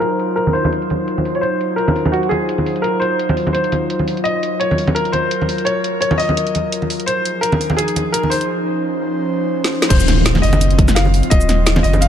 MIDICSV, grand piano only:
0, 0, Header, 1, 2, 480
1, 0, Start_track
1, 0, Tempo, 352941
1, 27, Time_signature, 4, 2, 24, 8
1, 16429, End_track
2, 0, Start_track
2, 0, Title_t, "Grand piano"
2, 0, Program_c, 0, 0
2, 1, Note_on_c, 0, 70, 99
2, 459, Note_off_c, 0, 70, 0
2, 487, Note_on_c, 0, 70, 94
2, 722, Note_on_c, 0, 72, 110
2, 745, Note_off_c, 0, 70, 0
2, 1640, Note_off_c, 0, 72, 0
2, 1838, Note_on_c, 0, 73, 72
2, 1921, Note_on_c, 0, 72, 98
2, 1937, Note_off_c, 0, 73, 0
2, 2395, Note_on_c, 0, 70, 90
2, 2429, Note_off_c, 0, 72, 0
2, 2882, Note_on_c, 0, 66, 84
2, 2906, Note_off_c, 0, 70, 0
2, 3116, Note_on_c, 0, 68, 100
2, 3117, Note_off_c, 0, 66, 0
2, 3834, Note_on_c, 0, 70, 92
2, 3874, Note_off_c, 0, 68, 0
2, 4076, Note_on_c, 0, 72, 94
2, 4098, Note_off_c, 0, 70, 0
2, 4779, Note_off_c, 0, 72, 0
2, 4799, Note_on_c, 0, 72, 82
2, 5259, Note_off_c, 0, 72, 0
2, 5764, Note_on_c, 0, 75, 102
2, 6221, Note_off_c, 0, 75, 0
2, 6251, Note_on_c, 0, 73, 95
2, 6728, Note_on_c, 0, 70, 93
2, 6754, Note_off_c, 0, 73, 0
2, 6960, Note_off_c, 0, 70, 0
2, 6968, Note_on_c, 0, 72, 94
2, 7684, Note_on_c, 0, 73, 98
2, 7719, Note_off_c, 0, 72, 0
2, 8147, Note_off_c, 0, 73, 0
2, 8167, Note_on_c, 0, 73, 98
2, 8401, Note_on_c, 0, 75, 101
2, 8425, Note_off_c, 0, 73, 0
2, 9320, Note_off_c, 0, 75, 0
2, 9606, Note_on_c, 0, 72, 97
2, 10079, Note_on_c, 0, 70, 88
2, 10111, Note_off_c, 0, 72, 0
2, 10561, Note_on_c, 0, 68, 84
2, 10588, Note_off_c, 0, 70, 0
2, 11049, Note_on_c, 0, 70, 88
2, 11069, Note_off_c, 0, 68, 0
2, 11287, Note_on_c, 0, 72, 84
2, 11305, Note_off_c, 0, 70, 0
2, 11520, Note_off_c, 0, 72, 0
2, 13449, Note_on_c, 0, 72, 91
2, 13904, Note_off_c, 0, 72, 0
2, 14171, Note_on_c, 0, 75, 97
2, 14891, Note_on_c, 0, 77, 99
2, 14921, Note_off_c, 0, 75, 0
2, 15370, Note_on_c, 0, 75, 98
2, 15394, Note_off_c, 0, 77, 0
2, 16068, Note_off_c, 0, 75, 0
2, 16088, Note_on_c, 0, 75, 91
2, 16333, Note_on_c, 0, 77, 99
2, 16345, Note_off_c, 0, 75, 0
2, 16429, Note_off_c, 0, 77, 0
2, 16429, End_track
0, 0, End_of_file